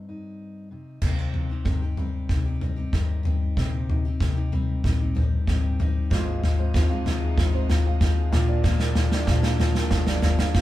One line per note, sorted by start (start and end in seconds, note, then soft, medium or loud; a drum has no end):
0.00 0.71 G2 soft
0.00 0.68 G3 soft
0.00 0.68 C4 soft
0.00 1.65 G4 soft
0.09 0.68 D#4 soft
0.71 1.01 C3 soft
0.71 1.00 D#4 soft
1.02 1.52 C2 medium
1.02 2.62 C3 medium
1.02 1.51 C3 medium
1.02 1.51 D#3 medium
1.02 1.19 A#3 soft
1.02 1.51 C4 medium
1.02 1.50 D#4 medium
1.02 1.48 G4 medium
1.02 kick medium
1.02 snare soft
1.02 floor tom medium
1.02 crash medium
1.19 3.57 C4 soft
1.34 2.31 D#4 soft
1.34 floor tom medium
1.50 1.66 C4 soft
1.50 1.66 D#4 soft
1.50 1.66 G4 soft
1.65 2.16 G2 medium
1.65 1.82 C3 medium
1.65 1.82 D#3 medium
1.65 1.83 C4 medium
1.65 1.83 D#4 medium
1.65 2.94 G4 soft
1.65 1.81 G4 medium
1.65 kick medium
1.65 snare soft
1.65 floor tom medium
1.82 1.97 C4 soft
1.82 1.98 D#4 soft
1.82 1.98 G4 soft
1.97 2.46 D#3 soft
1.97 3.53 G3 soft
1.97 2.46 C4 soft
1.97 2.47 D#4 soft
1.97 2.44 G4 medium
1.97 floor tom medium
2.29 2.80 C2 medium
2.29 3.25 D#4 soft
2.29 kick medium
2.29 snare soft
2.29 floor tom medium
2.45 2.61 C4 soft
2.45 2.62 D#4 soft
2.45 2.62 G4 soft
2.61 3.58 G2 soft
2.61 2.78 D#3 medium
2.61 2.78 C4 medium
2.61 2.76 D#4 medium
2.61 2.75 G4 medium
2.61 floor tom medium
2.76 2.93 C4 soft
2.76 2.93 D#4 soft
2.76 2.93 G4 soft
2.93 3.43 G2 medium
2.93 3.25 C3 medium
2.93 3.22 D#3 medium
2.93 3.24 C4 medium
2.93 3.25 D#4 medium
2.93 4.21 G4 soft
2.93 3.25 G4 medium
2.93 kick medium
2.93 snare soft
2.93 floor tom medium
3.23 3.56 D#3 medium
3.23 3.57 C4 medium
3.23 3.89 D#4 soft
3.23 3.57 D#4 medium
3.23 3.58 G4 medium
3.23 floor tom medium
3.57 4.07 A#1 medium
3.57 5.16 C3 medium
3.57 4.05 C3 medium
3.57 4.05 D#3 medium
3.57 6.08 C4 medium
3.57 4.05 C4 medium
3.57 4.05 D#4 medium
3.57 4.04 G4 medium
3.57 kick medium
3.57 snare medium
3.57 floor tom medium
3.89 4.84 D#4 soft
3.89 floor tom medium
4.05 4.21 C4 soft
4.05 4.21 D#4 soft
4.05 4.21 G4 soft
4.20 4.71 C3 medium
4.20 4.37 C3 medium
4.20 4.37 D#3 medium
4.20 4.37 C4 medium
4.20 4.36 D#4 medium
4.20 5.47 G4 medium
4.20 4.35 G4 medium
4.20 kick medium
4.20 snare medium
4.20 floor tom medium
4.36 4.52 C4 soft
4.36 4.53 D#4 soft
4.36 4.52 G4 soft
4.52 5.00 D#3 medium
4.52 6.07 G3 medium
4.52 5.01 C4 medium
4.52 5.00 D#4 medium
4.52 4.98 G4 medium
4.52 floor tom medium
4.84 5.34 A#1 medium
4.84 5.80 D#4 medium
4.84 kick medium
4.84 snare medium
4.84 floor tom medium
4.99 5.15 C4 soft
4.99 5.16 D#4 soft
4.99 5.16 G4 soft
5.15 6.11 G2 medium
5.15 5.47 D#3 medium
5.15 5.48 C4 medium
5.15 5.48 D#4 medium
5.15 5.49 G4 medium
5.15 floor tom medium
5.47 5.98 A1 medium
5.47 5.80 C3 medium
5.47 5.78 D#3 medium
5.47 5.79 C4 medium
5.47 5.80 D#4 medium
5.47 6.12 G4 medium
5.47 5.81 G4 medium
5.47 kick medium
5.47 snare medium
5.47 floor tom medium
5.79 6.10 D#3 medium
5.79 6.11 C4 medium
5.79 6.08 D#4 medium
5.79 6.12 D#4 medium
5.79 6.12 G4 medium
5.79 floor tom medium
6.10 6.61 G#1 medium
6.10 8.30 G#1 medium
6.10 6.59 G#2 medium
6.10 8.29 G#2 medium
6.10 8.31 C3 medium
6.10 6.59 D#3 medium
6.10 8.31 D#3 medium
6.10 10.61 F3 medium
6.10 6.58 F3 medium
6.10 8.29 G#3 medium
6.10 8.31 G#3 medium
6.10 6.57 G#3 medium
6.10 6.57 C4 medium
6.10 8.31 D#4 medium
6.10 6.41 F4 medium
6.10 8.29 F4 medium
6.10 6.55 F4 medium
6.10 8.30 C5 medium
6.10 8.30 D#5 medium
6.10 kick loud
6.10 snare medium
6.10 floor tom medium
6.27 6.91 G#4 medium
6.43 6.73 F4 medium
6.43 snare medium
6.43 floor tom medium
6.57 6.74 F3 soft
6.57 6.74 G#3 soft
6.57 6.75 C4 medium
6.57 6.74 F4 medium
6.57 7.23 C5 medium
6.74 7.25 D#2 medium
6.74 6.90 G#2 medium
6.74 6.91 D#3 medium
6.74 6.91 F3 medium
6.74 6.91 G#3 medium
6.74 6.89 C4 medium
6.74 7.04 F4 medium
6.74 6.89 F4 medium
6.74 kick loud
6.74 snare medium
6.74 floor tom medium
6.89 7.04 F3 soft
6.89 7.06 G#3 soft
6.89 7.07 C4 medium
6.89 7.06 F4 medium
6.89 7.54 F5 medium
7.06 7.54 F3 medium
7.06 7.54 G#3 medium
7.06 7.53 C4 medium
7.06 7.36 F4 medium
7.06 7.52 F4 medium
7.06 snare medium
7.06 floor tom medium
7.22 7.86 G#4 medium
7.38 7.88 G#1 medium
7.38 7.68 F4 medium
7.38 kick loud
7.38 snare medium
7.38 floor tom medium
7.53 7.68 F3 soft
7.53 7.69 G#3 soft
7.53 7.70 C4 medium
7.53 7.70 F4 medium
7.53 8.18 C5 medium
7.69 7.86 F3 medium
7.69 7.86 G#3 medium
7.69 7.85 C4 medium
7.69 8.00 F4 medium
7.69 7.84 F4 medium
7.69 snare medium
7.69 floor tom medium
7.85 8.00 F3 soft
7.85 8.01 G#3 soft
7.85 8.01 C4 soft
7.85 8.02 F4 medium
7.85 8.34 F5 medium
8.01 8.26 D#2 loud
8.01 8.33 G#2 medium
8.01 8.33 D#3 medium
8.01 8.31 F3 medium
8.01 8.33 G#3 medium
8.01 8.34 C4 medium
8.01 8.32 F4 medium
8.01 8.34 F4 medium
8.01 kick loud
8.01 snare medium
8.01 floor tom medium
8.18 8.34 G#4 medium
8.31 9.08 A#1 loud
8.31 10.61 A#1 medium
8.31 10.61 A#2 medium
8.31 10.61 F3 medium
8.31 8.64 F3 medium
8.31 10.61 A#3 medium
8.31 8.64 A#3 medium
8.31 10.61 D4 medium
8.31 8.65 D4 medium
8.31 8.63 F4 medium
8.31 10.61 A#4 medium
8.31 10.61 D5 medium
8.31 snare medium
8.31 floor tom medium
8.36 8.65 F4 medium
8.49 9.12 D5 medium
8.63 9.12 A#2 medium
8.63 9.13 F3 medium
8.63 9.13 A#3 medium
8.63 9.12 D4 medium
8.63 8.96 F4 medium
8.63 9.10 F4 medium
8.63 kick loud
8.63 snare medium
8.63 floor tom medium
8.80 9.45 A#4 medium
8.80 snare medium
8.95 9.27 F4 medium
8.95 snare loud
8.95 floor tom medium
9.12 9.28 A#3 soft
9.12 9.29 D4 medium
9.12 9.28 F4 medium
9.12 9.77 D5 medium
9.12 snare loud
9.27 9.78 A#2 loud
9.27 9.44 A#2 medium
9.27 9.45 F3 medium
9.27 9.45 A#3 medium
9.27 9.43 D4 loud
9.27 9.59 F4 medium
9.27 9.42 F4 medium
9.27 kick loud
9.27 snare loud
9.27 floor tom medium
9.43 9.60 A#3 soft
9.43 9.60 D4 medium
9.43 9.60 F4 medium
9.43 10.08 F5 medium
9.43 snare loud
9.60 9.76 F3 medium
9.60 9.75 A#3 medium
9.60 9.75 D4 medium
9.60 9.91 F4 medium
9.60 9.72 F4 medium
9.60 snare loud
9.60 floor tom medium
9.74 10.07 A#3 soft
9.74 10.06 D4 soft
9.74 10.04 F4 medium
9.74 10.40 A#4 medium
9.74 snare loud
9.91 10.41 G1 loud
9.91 10.23 F4 medium
9.91 kick loud
9.91 snare loud
9.91 floor tom medium
10.05 10.21 A#3 medium
10.05 10.21 D4 soft
10.05 10.23 F4 medium
10.05 10.61 D5 medium
10.05 snare loud
10.21 10.38 F3 medium
10.21 10.39 A#3 medium
10.21 10.39 D4 medium
10.21 10.37 F4 medium
10.21 10.54 F4 medium
10.21 snare loud
10.21 floor tom medium
10.38 10.55 D4 medium
10.38 10.55 F4 medium
10.38 10.61 F5 medium
10.38 snare loud
10.54 10.61 D2 medium
10.54 10.61 A#2 medium
10.54 10.61 F3 medium
10.54 10.61 A#3 medium
10.54 10.61 D4 medium
10.54 10.61 F4 medium
10.54 kick loud
10.54 snare loud
10.54 floor tom medium